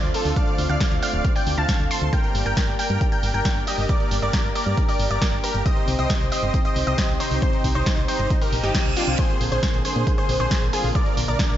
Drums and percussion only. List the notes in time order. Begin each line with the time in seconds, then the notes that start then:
0.03 closed hi-hat
0.14 open hi-hat
0.25 open hi-hat
0.36 kick, closed hi-hat
0.47 closed hi-hat
0.58 open hi-hat
0.69 closed hi-hat
0.80 kick, snare, closed hi-hat
0.92 closed hi-hat
1.03 open hi-hat
1.14 closed hi-hat
1.25 kick, closed hi-hat
1.36 open hi-hat
1.47 open hi-hat
1.58 closed hi-hat
1.69 kick, snare, closed hi-hat
1.80 closed hi-hat
1.91 open hi-hat
2.02 closed hi-hat
2.13 kick, closed hi-hat
2.24 closed hi-hat
2.35 open hi-hat
2.46 closed hi-hat
2.57 kick, snare, closed hi-hat
2.68 closed hi-hat
2.79 open hi-hat
2.90 closed hi-hat
3.01 kick, closed hi-hat
3.12 closed hi-hat
3.23 open hi-hat
3.34 closed hi-hat
3.45 kick, snare, closed hi-hat
3.56 closed hi-hat
3.67 open hi-hat
3.78 open hi-hat
3.89 kick, closed hi-hat
4.00 closed hi-hat
4.11 open hi-hat
4.22 closed hi-hat
4.33 kick, snare, closed hi-hat
4.44 closed hi-hat
4.55 open hi-hat
4.66 closed hi-hat
4.77 kick, closed hi-hat
4.88 open hi-hat
5.00 open hi-hat
5.11 closed hi-hat
5.22 kick, snare, closed hi-hat
5.33 closed hi-hat
5.44 open hi-hat
5.55 closed hi-hat
5.66 kick, closed hi-hat
5.77 closed hi-hat
5.88 open hi-hat
5.99 closed hi-hat
6.10 kick, snare, closed hi-hat
6.21 closed hi-hat
6.32 open hi-hat
6.54 kick, closed hi-hat
6.65 closed hi-hat
6.76 open hi-hat
6.87 closed hi-hat
6.98 kick, snare, closed hi-hat
7.09 closed hi-hat
7.20 open hi-hat
7.31 open hi-hat
7.42 kick, closed hi-hat
7.53 closed hi-hat
7.64 kick, open hi-hat
7.75 closed hi-hat
7.86 kick, snare, closed hi-hat
7.97 closed hi-hat
8.08 open hi-hat
8.19 closed hi-hat
8.30 kick, closed hi-hat
8.42 open hi-hat
8.53 open hi-hat
8.64 snare, closed hi-hat
8.75 kick, snare, closed hi-hat
8.86 closed hi-hat
8.97 open hi-hat
9.08 closed hi-hat
9.19 kick, closed hi-hat
9.30 closed hi-hat
9.41 open hi-hat
9.52 closed hi-hat
9.63 kick, snare, closed hi-hat
9.74 closed hi-hat
9.85 open hi-hat
9.96 closed hi-hat
10.07 kick, closed hi-hat
10.18 closed hi-hat
10.29 open hi-hat
10.40 closed hi-hat
10.51 kick, snare, closed hi-hat
10.62 closed hi-hat
10.73 open hi-hat
10.84 open hi-hat
10.95 kick, closed hi-hat
11.06 closed hi-hat
11.17 open hi-hat
11.28 closed hi-hat
11.39 kick, snare, closed hi-hat
11.50 closed hi-hat